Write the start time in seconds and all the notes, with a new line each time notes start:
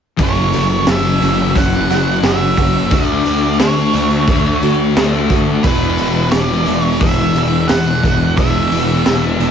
0.17 F#1 F#2 C#3 E3 F#3, kick, open hi-hat
0.21 E3 A3 C#4 F#4 C#5
0.53 F#1 A3, open hi-hat
0.87 F#1 E3 E5, snare, open hi-hat
1.21 F#1 F#2 C#3 E3 A3 C#4 F#4, open hi-hat
1.55 F#1 F#2 C#3 F#3 C#4 F#5, kick, open hi-hat
1.89 F#1 F#4, snare, open hi-hat
2.23 F#1 A3 E5, snare, open hi-hat
2.57 F#1 F#4, kick, open hi-hat
2.91 D2 D3 A3 F#4 D5, kick, open hi-hat
2.95 D4
3.26 D2, open hi-hat
3.60 D2 C#5, snare, open hi-hat
3.93 D2 D3 A3 F#4, open hi-hat
4.27 D2 D3 A3, kick, open hi-hat
4.31 D4
4.63 D2 F#4, open hi-hat
4.96 D2 A3, snare, open hi-hat
5.30 D2 F#4, kick, open hi-hat
5.63 E1 E2 B2 E3 G#3 D4 E4 B4, kick, open hi-hat
5.67 E3
5.98 E1 B3, open hi-hat
6.31 E1 E3 D5, snare, open hi-hat
6.66 E1 E2 B2 E3 G#3 B3 D4 E4, open hi-hat
6.81 C#5
7.00 E1 E2 B2 E3 D4 E5, kick, open hi-hat
7.35 E1 G#4, open hi-hat
7.68 E1 B3 F#5, snare, open hi-hat
8.03 E1 G#4, kick, open hi-hat
8.36 E1 E2 B2 E3 G#3 D4 E4 E5, kick, open hi-hat
8.72 E1 B3, open hi-hat
9.06 E1 E3, snare, open hi-hat
9.39 E1 E2 B2 E3 G#3 B3 D4 E4, open hi-hat